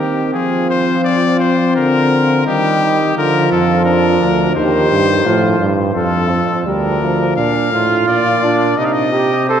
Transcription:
0.00 0.34 D#3 medium
0.00 2.42 C4 medium
0.00 0.33 G4 medium
0.33 1.79 F3 medium
0.33 1.73 F4 medium
0.33 0.69 G#4 medium
0.70 1.04 C5 medium
1.04 1.39 D5 medium
1.40 1.75 C5 medium
1.75 2.46 D3 medium
1.75 2.47 F4 medium
1.75 2.45 A#4 medium
2.46 3.15 D#3 medium
2.46 3.01 G3 medium
2.46 2.80 D#4 medium
2.46 3.15 G4 medium
2.81 3.16 D#4 medium
3.16 3.51 D3 medium
3.16 4.54 F3 medium
3.16 3.85 F4 medium
3.16 3.51 A#4 medium
3.52 4.20 F2 medium
3.52 3.85 A4 medium
3.86 4.58 D4 medium
3.86 4.54 A#4 medium
4.21 4.55 D2 medium
4.56 4.90 D#2 medium
4.56 5.25 D#3 medium
4.56 5.24 G4 medium
4.56 5.66 C5 medium
4.92 5.25 G2 medium
5.25 5.60 A2 medium
5.25 5.71 F3 medium
5.25 5.70 F4 medium
5.60 5.95 G2 medium
5.95 6.40 F2 medium
5.95 6.62 F3 medium
5.95 6.31 F4 medium
5.95 6.62 A4 medium
6.29 6.65 C4 medium
6.66 7.33 D2 medium
6.66 7.01 G3 medium
6.66 7.36 D4 medium
6.66 7.36 A#4 medium
7.01 7.36 F3 medium
7.36 7.74 A#2 medium
7.36 7.70 D4 medium
7.36 8.04 F5 medium
7.72 8.07 A2 medium
7.72 8.42 F4 loud
8.08 8.77 A#2 medium
8.08 8.79 D5 medium
8.43 8.77 D4 medium
8.78 9.60 C3 medium
8.78 9.12 D#4 medium
8.78 8.87 D#5 medium
8.85 8.94 F5 medium
8.93 9.48 D#5 medium
9.13 9.48 G4 loud
9.49 9.60 A4 loud
9.49 9.60 C5 medium

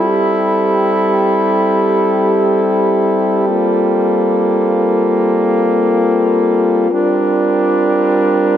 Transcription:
0.00 6.87 G3 medium
0.00 6.87 C4 medium
0.00 3.44 E4 medium
0.00 6.87 A4 medium
0.06 3.45 G4 medium
3.48 6.88 A#3 medium
3.48 6.88 F4 medium
6.91 8.57 G3 medium
6.91 8.57 C4 medium
6.91 8.57 D4 medium
6.91 8.57 F4 medium
6.91 8.57 A#4 medium

